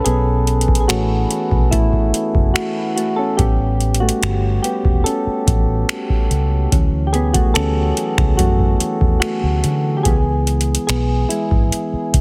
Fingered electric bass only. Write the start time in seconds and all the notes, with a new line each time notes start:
0.06 B1
0.89 A1
1.52 B1
1.72 A1
2.35 F#1
3.39 A1
4.23 G1
4.85 E1
5.27 muted fingered electric bass stroke
5.47 A1
6.31 C#2
6.72 D2
7.56 D2
8.18 C#2
8.39 F#2
8.81 muted fingered electric bass stroke
9.01 E2
9.23 muted fingered electric bass stroke
9.43 D2
9.64 D3
10.06 C#2
10.89 B1
11.52 G#1
11.93 muted fingered electric bass stroke
12.14 C#2